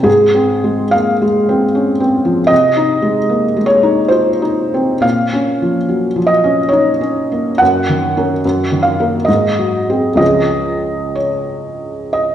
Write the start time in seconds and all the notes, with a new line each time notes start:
0.03 G#2 G#4
0.34 C4
0.64 G#3
0.91 A#3 F5
1.22 G#3
1.49 C4
1.75 C#4
2.00 C4
2.25 F3
2.47 C3 D#5
2.77 D#4
3.02 G#3
3.29 A#3
3.57 G#3
3.66 C#5
3.83 D#4
4.08 F4 C5
4.42 D#4
4.74 C4
5.00 A#2 F5
5.33 C#4
5.62 F3
5.89 F#3
6.16 F3
6.27 D#5
6.44 C#4
6.69 D#4 C#5
7.01 C#4
7.32 A#3
7.58 F#2 F#5
7.89 D#3
8.17 C#4 A#4
8.45 F#2
8.72 D#3
8.83 F5
9.00 A#3 A#4
9.25 G#2 D#5
9.59 F#3
9.90 C4 G#4
10.15 C#2 F3 C#4 G#4 D#5
11.15 C#5
12.13 D#5